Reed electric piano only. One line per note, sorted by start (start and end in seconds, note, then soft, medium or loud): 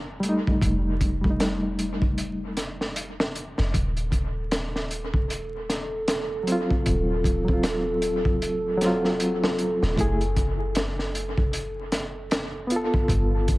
0.20 1.17 G3 medium
0.24 1.20 A3 medium
0.29 1.22 D#4 medium
1.21 2.52 G3 medium
1.26 2.54 A3 medium
1.30 2.56 D#4 medium
6.43 7.41 F#3 medium
6.47 7.43 C4 medium
6.52 7.45 F4 medium
7.45 8.75 F#3 medium
7.49 8.77 C4 medium
7.53 8.80 F4 medium
8.77 9.94 F#3 loud
8.82 9.96 C4 medium
8.86 9.98 F4 loud
9.96 10.23 A3 medium
9.96 10.25 E4 medium
10.01 10.26 G#4 medium
12.67 13.58 B3 medium
12.72 13.58 F4 medium
12.76 13.58 A4 medium